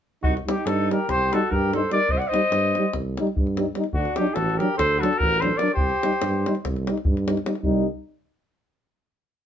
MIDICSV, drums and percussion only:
0, 0, Header, 1, 2, 480
1, 0, Start_track
1, 0, Tempo, 412939
1, 270, Time_signature, 9, 3, 24, 8
1, 10990, End_track
2, 0, Start_track
2, 0, Title_t, "Davul"
2, 277, Note_on_c, 9, 43, 84
2, 393, Note_off_c, 9, 43, 0
2, 429, Note_on_c, 9, 37, 29
2, 545, Note_off_c, 9, 37, 0
2, 564, Note_on_c, 9, 37, 69
2, 680, Note_off_c, 9, 37, 0
2, 776, Note_on_c, 9, 37, 68
2, 892, Note_off_c, 9, 37, 0
2, 914, Note_on_c, 9, 37, 19
2, 1030, Note_off_c, 9, 37, 0
2, 1063, Note_on_c, 9, 37, 48
2, 1179, Note_off_c, 9, 37, 0
2, 1268, Note_on_c, 9, 37, 52
2, 1268, Note_on_c, 9, 43, 50
2, 1384, Note_off_c, 9, 37, 0
2, 1384, Note_off_c, 9, 43, 0
2, 1543, Note_on_c, 9, 37, 57
2, 1660, Note_off_c, 9, 37, 0
2, 1760, Note_on_c, 9, 43, 57
2, 1876, Note_off_c, 9, 43, 0
2, 2016, Note_on_c, 9, 37, 47
2, 2133, Note_off_c, 9, 37, 0
2, 2226, Note_on_c, 9, 37, 45
2, 2330, Note_off_c, 9, 37, 0
2, 2330, Note_on_c, 9, 37, 20
2, 2426, Note_on_c, 9, 43, 59
2, 2447, Note_off_c, 9, 37, 0
2, 2543, Note_off_c, 9, 43, 0
2, 2577, Note_on_c, 9, 37, 22
2, 2693, Note_off_c, 9, 37, 0
2, 2716, Note_on_c, 9, 37, 55
2, 2810, Note_off_c, 9, 37, 0
2, 2810, Note_on_c, 9, 37, 20
2, 2926, Note_off_c, 9, 37, 0
2, 2930, Note_on_c, 9, 37, 59
2, 3046, Note_off_c, 9, 37, 0
2, 3070, Note_on_c, 9, 37, 18
2, 3186, Note_off_c, 9, 37, 0
2, 3198, Note_on_c, 9, 37, 42
2, 3315, Note_off_c, 9, 37, 0
2, 3411, Note_on_c, 9, 37, 50
2, 3411, Note_on_c, 9, 43, 43
2, 3527, Note_off_c, 9, 37, 0
2, 3527, Note_off_c, 9, 43, 0
2, 3690, Note_on_c, 9, 37, 49
2, 3801, Note_off_c, 9, 37, 0
2, 3801, Note_on_c, 9, 37, 18
2, 3913, Note_on_c, 9, 43, 77
2, 3917, Note_off_c, 9, 37, 0
2, 4029, Note_off_c, 9, 43, 0
2, 4032, Note_on_c, 9, 37, 19
2, 4149, Note_off_c, 9, 37, 0
2, 4152, Note_on_c, 9, 37, 52
2, 4269, Note_off_c, 9, 37, 0
2, 4362, Note_on_c, 9, 37, 44
2, 4460, Note_off_c, 9, 37, 0
2, 4460, Note_on_c, 9, 37, 25
2, 4568, Note_on_c, 9, 43, 64
2, 4576, Note_off_c, 9, 37, 0
2, 4684, Note_off_c, 9, 43, 0
2, 4710, Note_on_c, 9, 37, 22
2, 4826, Note_off_c, 9, 37, 0
2, 4835, Note_on_c, 9, 37, 58
2, 4951, Note_off_c, 9, 37, 0
2, 4961, Note_on_c, 9, 37, 20
2, 5065, Note_off_c, 9, 37, 0
2, 5065, Note_on_c, 9, 37, 61
2, 5181, Note_off_c, 9, 37, 0
2, 5227, Note_on_c, 9, 37, 22
2, 5344, Note_off_c, 9, 37, 0
2, 5349, Note_on_c, 9, 37, 43
2, 5465, Note_off_c, 9, 37, 0
2, 5571, Note_on_c, 9, 37, 60
2, 5571, Note_on_c, 9, 43, 46
2, 5687, Note_off_c, 9, 37, 0
2, 5687, Note_off_c, 9, 43, 0
2, 5851, Note_on_c, 9, 37, 56
2, 5962, Note_off_c, 9, 37, 0
2, 5962, Note_on_c, 9, 37, 25
2, 6048, Note_on_c, 9, 43, 70
2, 6078, Note_off_c, 9, 37, 0
2, 6164, Note_off_c, 9, 43, 0
2, 6166, Note_on_c, 9, 37, 22
2, 6283, Note_off_c, 9, 37, 0
2, 6304, Note_on_c, 9, 37, 48
2, 6420, Note_off_c, 9, 37, 0
2, 6499, Note_on_c, 9, 37, 54
2, 6601, Note_off_c, 9, 37, 0
2, 6601, Note_on_c, 9, 37, 26
2, 6706, Note_on_c, 9, 43, 80
2, 6717, Note_off_c, 9, 37, 0
2, 6822, Note_off_c, 9, 43, 0
2, 6854, Note_on_c, 9, 37, 22
2, 6970, Note_off_c, 9, 37, 0
2, 7013, Note_on_c, 9, 37, 60
2, 7122, Note_off_c, 9, 37, 0
2, 7122, Note_on_c, 9, 37, 21
2, 7225, Note_off_c, 9, 37, 0
2, 7225, Note_on_c, 9, 37, 74
2, 7341, Note_off_c, 9, 37, 0
2, 7361, Note_on_c, 9, 37, 19
2, 7477, Note_off_c, 9, 37, 0
2, 7512, Note_on_c, 9, 37, 55
2, 7612, Note_off_c, 9, 37, 0
2, 7612, Note_on_c, 9, 37, 29
2, 7728, Note_off_c, 9, 37, 0
2, 7729, Note_on_c, 9, 37, 56
2, 7729, Note_on_c, 9, 43, 54
2, 7845, Note_off_c, 9, 37, 0
2, 7845, Note_off_c, 9, 43, 0
2, 7862, Note_on_c, 9, 37, 23
2, 7979, Note_off_c, 9, 37, 0
2, 7989, Note_on_c, 9, 37, 60
2, 8105, Note_off_c, 9, 37, 0
2, 8108, Note_on_c, 9, 37, 24
2, 8194, Note_on_c, 9, 43, 85
2, 8224, Note_off_c, 9, 37, 0
2, 8310, Note_off_c, 9, 43, 0
2, 8336, Note_on_c, 9, 37, 28
2, 8452, Note_off_c, 9, 37, 0
2, 8459, Note_on_c, 9, 37, 63
2, 8571, Note_off_c, 9, 37, 0
2, 8571, Note_on_c, 9, 37, 28
2, 8675, Note_off_c, 9, 37, 0
2, 8675, Note_on_c, 9, 37, 66
2, 8780, Note_off_c, 9, 37, 0
2, 8780, Note_on_c, 9, 37, 27
2, 8873, Note_on_c, 9, 43, 64
2, 8896, Note_off_c, 9, 37, 0
2, 8990, Note_off_c, 9, 43, 0
2, 10990, End_track
0, 0, End_of_file